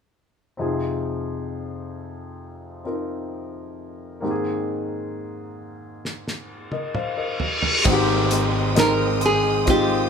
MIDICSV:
0, 0, Header, 1, 9, 480
1, 0, Start_track
1, 0, Key_signature, -4, "major"
1, 0, Tempo, 909091
1, 308, Time_signature, 4, 2, 24, 8
1, 5330, End_track
2, 0, Start_track
2, 0, Title_t, "String section"
2, 0, Program_c, 0, 48
2, 4147, Note_on_c, 0, 56, 69
2, 4147, Note_on_c, 0, 87, 70
2, 4148, Note_on_c, 0, 84, 57
2, 4150, Note_on_c, 0, 79, 60
2, 5330, Note_off_c, 0, 56, 0
2, 5330, Note_off_c, 0, 79, 0
2, 5330, Note_off_c, 0, 84, 0
2, 5330, Note_off_c, 0, 87, 0
2, 5330, End_track
3, 0, Start_track
3, 0, Title_t, "Nylon-string guitar"
3, 0, Program_c, 1, 24
3, 4644, Note_on_c, 1, 70, 94
3, 4883, Note_off_c, 1, 70, 0
3, 4886, Note_on_c, 1, 68, 86
3, 5118, Note_off_c, 1, 68, 0
3, 5120, Note_on_c, 1, 67, 77
3, 5330, Note_off_c, 1, 67, 0
3, 5330, End_track
4, 0, Start_track
4, 0, Title_t, "Grand piano"
4, 0, Program_c, 2, 0
4, 302, Note_on_c, 2, 60, 42
4, 308, Note_on_c, 2, 63, 40
4, 310, Note_on_c, 2, 48, 42
4, 313, Note_on_c, 2, 41, 45
4, 317, Note_on_c, 2, 65, 38
4, 323, Note_on_c, 2, 68, 49
4, 409, Control_c, 2, 64, 127
4, 1484, Note_off_c, 2, 60, 0
4, 1487, Note_off_c, 2, 63, 0
4, 1491, Note_off_c, 2, 65, 0
4, 1494, Note_off_c, 2, 68, 0
4, 1502, Note_on_c, 2, 60, 36
4, 1507, Note_on_c, 2, 63, 34
4, 1511, Note_on_c, 2, 65, 32
4, 1513, Note_on_c, 2, 70, 37
4, 2208, Note_off_c, 2, 48, 0
4, 2209, Note_off_c, 2, 41, 0
4, 2219, Note_off_c, 2, 60, 0
4, 2220, Note_on_c, 2, 58, 43
4, 2227, Note_off_c, 2, 63, 0
4, 2227, Note_on_c, 2, 60, 42
4, 2229, Note_off_c, 2, 65, 0
4, 2229, Note_on_c, 2, 44, 46
4, 2229, Note_on_c, 2, 51, 45
4, 2231, Note_off_c, 2, 70, 0
4, 2235, Control_c, 2, 64, 0
4, 2235, Note_on_c, 2, 63, 45
4, 2241, Note_on_c, 2, 67, 40
4, 2269, Note_off_c, 2, 67, 0
4, 2275, Note_on_c, 2, 68, 54
4, 2335, Control_c, 2, 64, 127
4, 3547, Note_on_c, 2, 75, 45
4, 3552, Note_on_c, 2, 70, 37
4, 3661, Note_off_c, 2, 75, 0
4, 3664, Note_off_c, 2, 70, 0
4, 3669, Note_on_c, 2, 77, 40
4, 3671, Note_on_c, 2, 72, 36
4, 3782, Note_off_c, 2, 77, 0
4, 3784, Note_off_c, 2, 72, 0
4, 3785, Note_on_c, 2, 75, 42
4, 3788, Note_on_c, 2, 70, 38
4, 3883, Note_off_c, 2, 58, 0
4, 3886, Note_off_c, 2, 60, 0
4, 3887, Note_off_c, 2, 44, 0
4, 3888, Note_off_c, 2, 51, 0
4, 3891, Note_off_c, 2, 63, 0
4, 3910, Note_off_c, 2, 68, 0
4, 3914, Control_c, 2, 64, 0
4, 3993, Control_c, 2, 64, 127
4, 4014, Note_off_c, 2, 75, 0
4, 4016, Note_off_c, 2, 70, 0
4, 4143, Note_on_c, 2, 56, 72
4, 4146, Note_on_c, 2, 51, 67
4, 4146, Note_on_c, 2, 60, 65
4, 4147, Note_on_c, 2, 44, 67
4, 4150, Note_on_c, 2, 63, 66
4, 4152, Note_on_c, 2, 66, 66
4, 4155, Control_c, 2, 64, 0
4, 4184, Note_off_c, 2, 66, 0
4, 4187, Note_on_c, 2, 67, 79
4, 4261, Control_c, 2, 64, 127
4, 4601, Note_off_c, 2, 56, 0
4, 4603, Note_off_c, 2, 60, 0
4, 4605, Note_off_c, 2, 63, 0
4, 4621, Note_on_c, 2, 56, 65
4, 4623, Note_off_c, 2, 67, 0
4, 4626, Note_on_c, 2, 60, 62
4, 4629, Note_on_c, 2, 63, 59
4, 4633, Note_on_c, 2, 70, 73
4, 4846, Note_off_c, 2, 44, 0
4, 4846, Note_off_c, 2, 51, 0
4, 5080, Note_off_c, 2, 56, 0
4, 5083, Note_off_c, 2, 60, 0
4, 5084, Note_off_c, 2, 63, 0
4, 5086, Note_off_c, 2, 70, 0
4, 5098, Note_on_c, 2, 56, 59
4, 5101, Note_on_c, 2, 60, 59
4, 5104, Note_on_c, 2, 63, 59
4, 5110, Note_on_c, 2, 65, 70
4, 5330, Note_off_c, 2, 56, 0
4, 5330, Note_off_c, 2, 60, 0
4, 5330, Note_off_c, 2, 63, 0
4, 5330, Note_off_c, 2, 65, 0
4, 5330, End_track
5, 0, Start_track
5, 0, Title_t, "Steel-string acoustic guitar"
5, 0, Program_c, 3, 25
5, 4148, Note_on_c, 3, 44, 65
5, 4388, Note_on_c, 3, 60, 52
5, 4627, Note_on_c, 3, 63, 58
5, 5101, Note_off_c, 3, 60, 0
5, 5108, Note_on_c, 3, 60, 55
5, 5330, Note_off_c, 3, 44, 0
5, 5330, Note_off_c, 3, 60, 0
5, 5330, Note_off_c, 3, 63, 0
5, 5330, End_track
6, 0, Start_track
6, 0, Title_t, "Fretless electric bass"
6, 0, Program_c, 4, 35
6, 4148, Note_on_c, 4, 32, 87
6, 5327, Note_off_c, 4, 32, 0
6, 5330, End_track
7, 0, Start_track
7, 0, Title_t, "Downlifter"
7, 0, Program_c, 5, 103
7, 4150, Note_on_c, 5, 60, 72
7, 5330, Note_off_c, 5, 60, 0
7, 5330, End_track
8, 0, Start_track
8, 0, Title_t, "Reverse cymbal"
8, 0, Program_c, 6, 119
8, 3190, Note_on_c, 6, 60, 57
8, 4149, Note_off_c, 6, 60, 0
8, 5330, End_track
9, 0, Start_track
9, 0, Title_t, "Drums"
9, 3195, Note_on_c, 9, 38, 37
9, 3248, Note_off_c, 9, 38, 0
9, 3314, Note_on_c, 9, 38, 39
9, 3366, Note_off_c, 9, 38, 0
9, 3546, Note_on_c, 9, 48, 43
9, 3599, Note_off_c, 9, 48, 0
9, 3667, Note_on_c, 9, 47, 58
9, 3720, Note_off_c, 9, 47, 0
9, 3906, Note_on_c, 9, 43, 57
9, 3959, Note_off_c, 9, 43, 0
9, 4025, Note_on_c, 9, 43, 52
9, 4078, Note_off_c, 9, 43, 0
9, 4147, Note_on_c, 9, 49, 69
9, 4148, Note_on_c, 9, 36, 89
9, 4200, Note_off_c, 9, 36, 0
9, 4200, Note_off_c, 9, 49, 0
9, 4387, Note_on_c, 9, 42, 73
9, 4440, Note_off_c, 9, 42, 0
9, 4627, Note_on_c, 9, 42, 72
9, 4633, Note_on_c, 9, 38, 91
9, 4680, Note_off_c, 9, 42, 0
9, 4686, Note_off_c, 9, 38, 0
9, 4864, Note_on_c, 9, 42, 51
9, 4917, Note_off_c, 9, 42, 0
9, 5106, Note_on_c, 9, 42, 67
9, 5109, Note_on_c, 9, 36, 80
9, 5159, Note_off_c, 9, 42, 0
9, 5162, Note_off_c, 9, 36, 0
9, 5330, End_track
0, 0, End_of_file